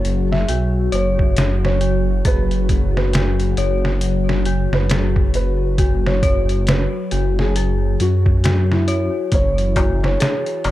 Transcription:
0.00 9.34 F#3 medium
0.00 0.49 F#4 medium
0.00 9.34 F#4 medium
0.00 2.25 G#4 medium
0.00 0.24 C#5 medium
0.00 0.92 C#5 loud
0.05 0.45 F#1 loud
0.05 closed hi-hat medium
0.32 0.88 E5 medium
0.32 snare soft
0.49 0.89 B1 medium
0.49 0.90 F#4 medium
0.49 closed hi-hat medium
0.92 2.22 F#1 medium
0.92 1.35 C#5 loud
0.92 1.56 C#5 loud
0.92 closed hi-hat medium
1.19 kick medium
1.37 snare loud
1.37 closed hi-hat medium
1.65 2.21 C#5 medium
1.65 snare soft
1.81 2.22 F#4 medium
1.81 closed hi-hat medium
2.25 3.54 F#1 medium
2.25 2.68 G#4 medium
2.25 2.89 B4 loud
2.25 kick loud
2.25 closed hi-hat medium
2.51 closed hi-hat soft
2.69 kick medium
2.69 closed hi-hat medium
2.97 3.74 B4 medium
2.97 snare soft
3.13 3.54 F#4 medium
3.13 snare loud
3.13 closed hi-hat medium
3.40 closed hi-hat soft
3.57 4.67 F#1 loud
3.57 4.00 C#5 medium
3.57 closed hi-hat medium
3.85 snare soft
4.01 closed hi-hat loud
4.29 snare medium
4.46 4.87 F#4 medium
4.46 closed hi-hat medium
4.72 5.31 F#1 medium
4.72 5.30 B4 medium
4.72 snare soft
4.90 5.33 G#4 medium
4.90 snare loud
4.90 closed hi-hat medium
5.16 kick loud
5.34 6.88 F#1 medium
5.34 5.97 B4 loud
5.34 closed hi-hat medium
5.78 6.20 F#4 medium
5.78 kick loud
5.78 closed hi-hat medium
6.06 6.62 C#5 medium
6.06 snare medium
6.23 6.65 C#5 loud
6.23 kick medium
6.23 closed hi-hat medium
6.49 closed hi-hat soft
6.67 7.30 B4 medium
6.67 snare loud
6.67 closed hi-hat medium
7.11 7.96 F#1 loud
7.11 7.52 F#4 medium
7.11 closed hi-hat medium
7.39 7.95 G#4 medium
7.39 snare soft
7.56 7.98 G#4 medium
7.56 closed hi-hat medium
8.00 9.09 F#2 medium
8.00 8.63 F#4 medium
8.00 closed hi-hat medium
8.26 kick loud
8.44 8.84 F#4 medium
8.44 snare loud
8.44 closed hi-hat medium
8.72 9.28 E4 medium
8.72 snare soft
8.88 9.30 C#5 loud
8.88 closed hi-hat medium
9.31 10.17 F#1 loud
9.31 10.71 E3 medium
9.31 10.71 E4 medium
9.31 9.95 C#5 loud
9.31 kick loud
9.31 closed hi-hat medium
9.31 darbuka tek soft
9.58 closed hi-hat soft
9.76 10.16 F#4 medium
9.76 kick medium
9.76 closed hi-hat medium
9.76 darbuka tek loud
10.04 10.71 C#5 medium
10.04 snare soft
10.04 darbuka tek soft
10.20 10.62 G#4 medium
10.20 snare loud
10.20 closed hi-hat medium
10.20 darbuka tek soft
10.46 closed hi-hat soft
10.64 10.71 F#1 loud
10.64 closed hi-hat medium
10.64 darbuka tek medium

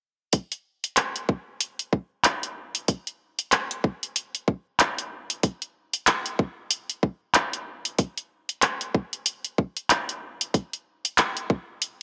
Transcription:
0.33 kick loud
0.33 closed hi-hat medium
0.52 closed hi-hat soft
0.84 closed hi-hat medium
0.97 clap loud
0.97 closed hi-hat medium
1.16 closed hi-hat soft
1.29 kick loud
1.61 closed hi-hat medium
1.79 closed hi-hat soft
1.93 kick loud
2.24 clap loud
2.24 closed hi-hat medium
2.43 closed hi-hat soft
2.75 closed hi-hat medium
2.88 kick loud
2.88 closed hi-hat medium
3.07 closed hi-hat soft
3.39 closed hi-hat medium
3.52 clap loud
3.52 closed hi-hat medium
3.71 closed hi-hat soft
3.84 kick loud
4.03 closed hi-hat soft
4.16 closed hi-hat medium
4.35 closed hi-hat soft
4.48 kick loud
4.80 clap loud
4.80 closed hi-hat medium
4.98 closed hi-hat soft
5.30 closed hi-hat medium
5.43 kick loud
5.43 closed hi-hat medium
5.62 closed hi-hat soft
5.93 closed hi-hat medium
6.07 clap loud
6.07 closed hi-hat medium
6.26 closed hi-hat soft
6.39 kick loud
6.71 closed hi-hat medium
6.90 closed hi-hat soft
7.03 kick loud
7.34 clap loud
7.34 closed hi-hat medium
7.53 closed hi-hat soft
7.85 closed hi-hat medium
7.99 kick loud
7.99 closed hi-hat medium
8.18 closed hi-hat soft
8.49 closed hi-hat soft
8.62 clap loud
8.62 closed hi-hat medium
8.81 closed hi-hat soft
8.95 kick loud
9.13 closed hi-hat soft
9.26 closed hi-hat medium
9.45 closed hi-hat soft
9.58 kick loud
9.77 closed hi-hat soft
9.90 clap loud
9.90 closed hi-hat medium
10.09 closed hi-hat soft
10.41 closed hi-hat soft
10.54 kick loud
10.54 closed hi-hat medium
10.73 closed hi-hat soft
11.05 closed hi-hat soft
11.18 clap loud
11.18 closed hi-hat medium
11.37 closed hi-hat soft
11.50 kick loud
11.82 closed hi-hat medium

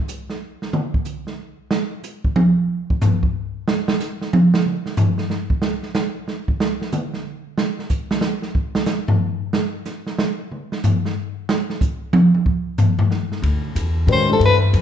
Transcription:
0.08 hi-hat pedal medium
0.30 snare soft
0.62 snare soft
0.73 mid tom medium
0.94 kick medium
1.05 hi-hat pedal medium
1.27 snare soft
1.71 snare medium
2.03 hi-hat pedal medium
2.24 kick medium
2.36 high tom loud
2.90 kick medium
3.01 floor tom loud
3.01 hi-hat pedal medium
3.23 kick medium
3.68 snare loud
3.88 snare loud
4.00 snare soft
4.00 hi-hat pedal medium
4.21 snare soft
4.33 high tom loud
4.54 snare medium
4.66 mid tom soft
4.86 snare soft
4.97 floor tom loud
4.97 hi-hat pedal medium
5.18 snare soft
5.30 snare medium
5.50 kick medium
5.62 snare medium
5.83 snare soft
5.94 snare medium
5.94 hi-hat pedal soft
6.28 snare soft
6.48 kick medium
6.60 snare medium
6.82 snare soft
6.92 hi-hat pedal medium
6.92 mid tom medium
7.14 snare soft
7.58 snare medium
7.79 snare soft
7.90 kick medium
7.90 hi-hat pedal medium
8.11 snare medium
8.21 snare medium
8.42 snare soft
8.55 kick medium
8.75 snare medium
8.86 snare medium
8.86 hi-hat pedal medium
9.08 floor tom loud
9.53 snare loud
9.85 snare soft
9.85 hi-hat pedal medium
10.07 snare soft
10.18 snare medium
10.52 mid tom soft
10.72 snare medium
10.83 floor tom medium
10.83 hi-hat pedal medium
11.05 snare medium
11.49 snare medium
11.70 snare soft
11.81 kick medium
11.81 hi-hat pedal medium
12.13 high tom loud
12.34 high tom soft
12.46 kick medium
12.78 floor tom loud
12.78 hi-hat pedal medium
12.99 floor tom loud
13.11 snare soft
13.32 snare soft
13.42 13.75 D2 medium
13.42 ride medium
13.75 14.06 E2 medium
13.75 hi-hat pedal medium
13.75 ride medium
14.07 14.39 A2 medium
14.07 14.28 D#3 medium
14.07 14.28 G#3 soft
14.07 14.28 C#4 soft
14.07 14.28 F#4 soft
14.07 14.28 B4 medium
14.07 ride medium
14.12 14.30 C5 medium
14.29 14.58 E3 medium
14.29 14.58 A3 soft
14.29 14.59 D4 soft
14.29 14.59 G4 soft
14.29 14.43 A4 medium
14.29 14.59 C5 medium
14.40 14.72 G2 medium
14.40 ride medium
14.45 14.57 B4 medium
14.73 14.82 F2 medium
14.73 hi-hat pedal medium
14.73 ride medium

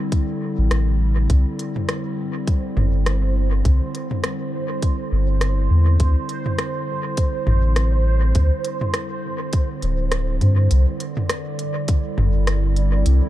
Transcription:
0.00 5.98 D3 medium
0.00 10.71 G3 medium
0.00 10.71 C4 medium
0.00 10.71 E4 medium
0.12 kick loud
0.12 closed hi-hat soft
0.58 0.69 A1 medium
0.71 1.27 A1 medium
0.71 cross-stick medium
0.71 closed hi-hat soft
1.30 1.45 C2 medium
1.30 10.73 C5 medium
1.30 kick loud
1.30 closed hi-hat soft
1.59 closed hi-hat soft
1.76 mid tom medium
1.89 cross-stick medium
1.89 closed hi-hat soft
2.48 kick loud
2.48 closed hi-hat soft
2.77 3.63 G1 medium
2.77 mid tom medium
3.06 cross-stick medium
3.06 closed hi-hat soft
3.65 3.80 C2 loud
3.65 kick loud
3.65 closed hi-hat soft
3.95 closed hi-hat soft
4.11 mid tom medium
4.24 cross-stick medium
4.24 closed hi-hat soft
4.82 kick loud
4.82 closed hi-hat soft
5.12 5.69 G1 medium
5.41 cross-stick medium
5.41 closed hi-hat soft
5.71 5.97 E2 medium
6.00 6.15 D2 medium
6.00 13.29 D3 medium
6.00 kick loud
6.00 closed hi-hat soft
6.29 closed hi-hat soft
6.46 mid tom medium
6.59 cross-stick medium
6.59 closed hi-hat soft
7.17 kick loud
7.17 closed hi-hat medium
7.47 8.33 A1 loud
7.47 mid tom medium
7.76 cross-stick medium
7.76 closed hi-hat soft
8.35 8.50 D2 medium
8.35 kick loud
8.35 closed hi-hat soft
8.65 closed hi-hat soft
8.81 mid tom medium
8.94 cross-stick medium
8.94 closed hi-hat soft
9.53 kick loud
9.53 closed hi-hat medium
9.82 10.39 D1 medium
9.82 closed hi-hat soft
10.12 cross-stick medium
10.12 closed hi-hat medium
10.41 10.68 G2 medium
10.41 closed hi-hat soft
10.41 mid tom medium
10.71 10.86 C2 medium
10.71 13.29 D5 medium
10.71 closed hi-hat medium
11.00 closed hi-hat soft
11.17 mid tom medium
11.29 13.29 G3 medium
11.29 cross-stick medium
11.29 closed hi-hat medium
11.57 13.29 E4 medium
11.57 closed hi-hat soft
11.88 kick loud
11.88 closed hi-hat medium
12.18 13.04 G1 loud
12.18 mid tom medium
12.37 13.29 C4 medium
12.47 cross-stick medium
12.47 closed hi-hat medium
12.76 closed hi-hat soft
13.06 13.21 C2 loud
13.06 closed hi-hat soft

